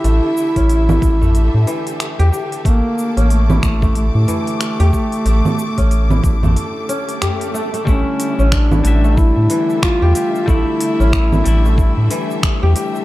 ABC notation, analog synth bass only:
X:1
M:4/4
L:1/16
Q:"Swing 16ths" 1/4=92
K:none
V:1 name="Analog synth bass" clef=bass
A,,, z2 A,,,3 A,,,3 A,, z3 E,, z2 | A,,, z2 A,,,3 A,,,3 A,, z3 E,, z2 | A,,, z2 A,,,3 A,,,2 z8 | A,,, z2 A,,,3 A,,,3 A,, z3 E,, z2 |
A,,, z2 A,,,3 A,,,3 A,, z3 E,, z2 |]